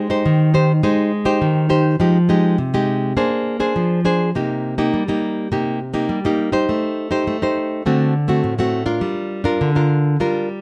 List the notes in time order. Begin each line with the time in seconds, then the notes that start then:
Already playing: G#3
0.10 D#4 G4 C5
0.26 D#3
0.54 D#4 G4 C5
0.83 G#3 D#4 G4 C5
1.25 D#4 G4 C5
1.42 D#3
1.69 D#4 G4 C5
2.00 F3 G#3 D#4 G4
2.29 G#3 D#4 G4
2.58 C3
2.74 G#3 D#4 G4
3.17 A#3 D4 G#4 C5
3.60 D4 G#4 C5
3.76 F3
4.05 D4 G#4 C5
4.35 C3 A#3 D#4 G4
4.78 A#3 D#4 G4
4.94 G3
5.08 A#3 D#4 G4
5.52 C3 A#3 D#4 G4
5.94 A#3 D#4 G4
6.09 G3
6.25 A#3 D#4 G4
6.52 D#4 G4 C5
6.69 A3
7.11 D#4 G4 C5
7.27 A3
7.42 D#4 G4 C5
7.86 D3 A3 C4 F#4
8.28 A3 C4 F#4
8.44 A2
8.59 A3 C4 F#4
8.86 D4 F4 A#4
9.01 G3
9.44 D4 F4 A#4
9.61 D3
9.75 D4 F4 A#4
10.20 G3 D4 F4 A#4